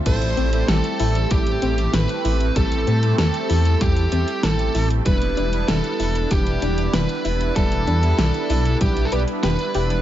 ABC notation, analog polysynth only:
X:1
M:4/4
L:1/16
Q:1/4=96
K:Am
V:1 name="Analog polysynth"
[G,A,CEA]3 [G,A,CEA]12- [G,A,CEA] | [G,A,CEA]3 [G,A,CEA]12- [G,A,CEA] | [G,B,DEB]3 [G,B,DEB]12- [G,B,DEB] | [G,B,DEB]3 [G,B,DEB]6- [G,B,DEB] [G,B,DEB]4 [G,B,DEd]2 |]